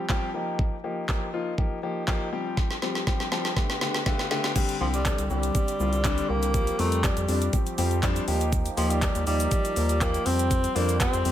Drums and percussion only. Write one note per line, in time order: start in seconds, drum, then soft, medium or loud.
0.09 kick loud
0.09 clap loud
0.59 kick loud
1.09 kick loud
1.09 clap loud
1.58 kick loud
2.08 kick loud
2.08 clap loud
2.57 kick loud
2.57 snare medium
2.71 snare medium
2.82 snare medium
2.95 snare medium
3.07 kick loud
3.07 snare medium
3.20 snare medium
3.32 snare medium
3.45 snare medium
3.57 kick loud
3.57 snare medium
3.70 snare medium
3.81 snare medium
3.94 snare medium
4.06 kick loud
4.06 snare medium
4.19 snare medium
4.31 snare medium
4.44 snare medium
4.56 kick loud
4.56 closed hi-hat medium
4.56 crash loud
4.56 shaker medium
4.69 closed hi-hat medium
4.69 shaker soft
4.94 closed hi-hat medium
4.94 shaker soft
5.05 kick loud
5.05 clap loud
5.05 closed hi-hat medium
5.05 shaker medium
5.18 closed hi-hat medium
5.18 shaker soft
5.30 shaker soft
5.43 closed hi-hat medium
5.43 shaker soft
5.55 kick loud
5.55 closed hi-hat medium
5.55 shaker medium
5.68 closed hi-hat medium
5.68 shaker soft
5.80 shaker medium
5.93 closed hi-hat soft
5.93 shaker medium
6.04 kick loud
6.04 clap loud
6.04 closed hi-hat medium
6.04 shaker medium
6.18 closed hi-hat medium
6.18 shaker soft
6.43 closed hi-hat medium
6.43 shaker medium
6.54 kick loud
6.54 closed hi-hat medium
6.54 shaker medium
6.67 closed hi-hat medium
6.67 shaker medium
6.79 open hi-hat medium
6.92 closed hi-hat medium
6.92 shaker soft
7.04 kick loud
7.04 clap loud
7.04 closed hi-hat medium
7.04 shaker medium
7.17 closed hi-hat medium
7.17 shaker soft
7.28 open hi-hat medium
7.28 shaker medium
7.41 closed hi-hat medium
7.41 shaker soft
7.53 kick loud
7.53 closed hi-hat medium
7.53 shaker medium
7.66 closed hi-hat medium
7.66 shaker soft
7.78 open hi-hat medium
7.78 shaker medium
7.91 closed hi-hat soft
7.91 shaker soft
8.03 kick loud
8.03 clap loud
8.03 closed hi-hat medium
8.03 shaker medium
8.16 closed hi-hat medium
8.16 shaker soft
8.28 open hi-hat medium
8.41 closed hi-hat medium
8.41 shaker medium
8.53 kick loud
8.53 closed hi-hat medium
8.53 shaker medium
8.65 closed hi-hat medium
8.65 shaker medium
8.77 open hi-hat medium
8.77 shaker medium
8.90 closed hi-hat medium
8.90 shaker soft
8.90 shaker medium
9.02 kick loud
9.02 clap loud
9.02 closed hi-hat medium
9.02 shaker medium
9.15 closed hi-hat medium
9.15 shaker medium
9.15 shaker soft
9.27 open hi-hat medium
9.27 shaker medium
9.27 shaker soft
9.40 closed hi-hat medium
9.40 shaker soft
9.40 shaker medium
9.51 kick loud
9.51 closed hi-hat medium
9.51 shaker medium
9.65 closed hi-hat medium
9.65 shaker soft
9.65 shaker medium
9.76 open hi-hat medium
9.76 shaker medium
9.89 closed hi-hat soft
9.89 shaker medium
9.89 shaker soft
10.01 kick loud
10.01 clap loud
10.01 closed hi-hat medium
10.01 shaker medium
10.14 closed hi-hat soft
10.14 shaker soft
10.14 shaker medium
10.26 open hi-hat medium
10.26 shaker medium
10.39 closed hi-hat medium
10.39 shaker medium
10.51 kick loud
10.51 closed hi-hat medium
10.51 shaker medium
10.64 closed hi-hat medium
10.64 shaker medium
10.76 open hi-hat medium
10.76 shaker medium
10.89 closed hi-hat medium
10.89 shaker soft
10.89 shaker medium
11.00 kick loud
11.00 clap loud
11.00 closed hi-hat medium
11.00 shaker medium
11.13 closed hi-hat medium
11.13 shaker medium
11.13 shaker soft
11.25 open hi-hat medium
11.25 shaker soft